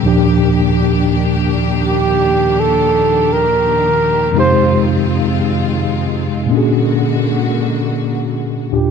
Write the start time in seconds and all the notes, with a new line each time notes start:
Already playing: A#3 G4
0.03 D#2 A#2 D#3 F3 D4
0.08 G4
1.87 G4
2.60 A4
3.33 A#4
4.33 F2 C3 G#3 C4 D#4 F4
4.37 G4 C5
6.46 A#2 A#3
6.51 D3 A#3 C#4 D4 F#4
6.55 F#4 G#4
8.72 D#2 A#2 D4 F4 G4